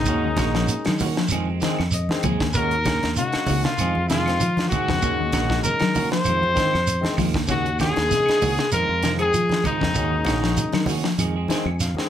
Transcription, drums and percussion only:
0.05 kick, closed hi-hat, shekere
0.36 kick, snare, closed hi-hat, high conga, low conga, claves, shekere
0.55 snare
0.68 closed hi-hat, shekere
0.85 snare, closed hi-hat, claves
0.98 open hi-hat, high conga, low conga, shekere
1.17 snare
1.28 closed hi-hat, claves, shekere
1.60 snare, closed hi-hat, high conga, shekere
1.79 snare, claves
1.91 closed hi-hat, shekere
2.09 snare, high conga
2.23 kick, closed hi-hat, high conga, low conga, claves, shekere
2.40 kick, snare
2.53 kick, closed hi-hat, shekere
2.71 closed hi-hat
2.85 kick, snare, closed hi-hat, high conga, low conga, claves, shekere
3.03 snare, closed hi-hat
3.16 closed hi-hat, shekere
3.32 snare, closed hi-hat, claves
3.47 open hi-hat, high conga, low conga, shekere
3.64 snare, closed hi-hat
3.78 closed hi-hat, claves, shekere
3.95 high conga
4.09 snare, closed hi-hat, high conga, shekere
4.26 snare, closed hi-hat, claves
4.40 closed hi-hat, shekere
4.57 snare, closed hi-hat, high conga
4.71 kick, closed hi-hat, low conga, claves, shekere
4.88 kick, snare
5.02 kick, closed hi-hat, shekere
5.32 kick, snare, closed hi-hat, high conga, low conga, claves, shekere
5.50 kick, snare
5.64 closed hi-hat, high conga, low conga, shekere
5.79 snare, closed hi-hat, claves
5.95 open hi-hat, high conga, low conga, shekere
6.12 snare
6.25 closed hi-hat, claves, shekere
6.43 high conga
6.56 kick, snare, closed hi-hat, high conga, shekere
6.73 snare, claves
6.87 closed hi-hat, shekere
7.04 snare, high conga
7.17 kick, snare, open hi-hat, low conga, claves, shekere
7.34 kick, snare
7.47 kick, snare, closed hi-hat, shekere
7.66 closed hi-hat
7.79 kick, snare, closed hi-hat, high conga, low conga, claves, shekere
7.96 snare, closed hi-hat
8.11 snare, closed hi-hat, high conga, low conga, shekere
8.26 snare, closed hi-hat, claves
8.42 open hi-hat, high conga, low conga, shekere
8.58 snare, closed hi-hat
8.72 closed hi-hat, claves, shekere
9.03 snare, closed hi-hat, high conga, shekere
9.19 closed hi-hat, claves
9.34 closed hi-hat, shekere
9.49 snare, closed hi-hat, high conga
9.64 kick, closed hi-hat, high conga, low conga, claves, shekere
9.81 kick, snare
9.95 kick, closed hi-hat, shekere
10.25 kick, snare, closed hi-hat, high conga, claves, shekere
10.44 snare
10.57 closed hi-hat, high conga, low conga, shekere
10.72 snare, closed hi-hat, claves
10.86 open hi-hat, high conga, low conga, shekere
11.04 snare
11.19 closed hi-hat, claves, shekere
11.48 snare, closed hi-hat, high conga, shekere
11.66 claves
11.80 snare, closed hi-hat, shekere
11.95 snare, high conga

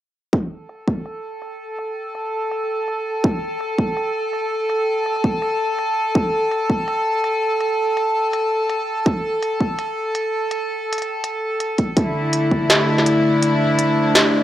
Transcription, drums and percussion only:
0.33 kick
0.69 closed hi-hat
0.88 kick
1.06 closed hi-hat
1.42 closed hi-hat
1.79 closed hi-hat
2.15 closed hi-hat
2.51 closed hi-hat
2.88 closed hi-hat
3.24 kick, closed hi-hat
3.61 closed hi-hat
3.79 kick
3.97 closed hi-hat
4.33 closed hi-hat
4.70 closed hi-hat
5.06 closed hi-hat
5.16 closed hi-hat
5.24 kick, closed hi-hat
5.42 closed hi-hat
5.79 closed hi-hat
6.15 kick, closed hi-hat
6.51 closed hi-hat
6.70 kick
6.88 closed hi-hat
7.24 closed hi-hat
7.61 closed hi-hat
7.97 closed hi-hat
8.33 closed hi-hat
8.70 closed hi-hat
9.06 kick, closed hi-hat
9.43 closed hi-hat
9.61 kick
9.79 closed hi-hat
10.15 closed hi-hat
10.51 closed hi-hat
10.93 closed hi-hat
10.98 closed hi-hat
11.02 closed hi-hat
11.24 closed hi-hat
11.60 closed hi-hat
11.78 kick, closed hi-hat
11.97 kick, closed hi-hat
12.33 closed hi-hat
12.51 kick
12.70 snare, closed hi-hat
12.98 snare
13.06 closed hi-hat
13.43 closed hi-hat
13.79 closed hi-hat
14.15 snare, closed hi-hat

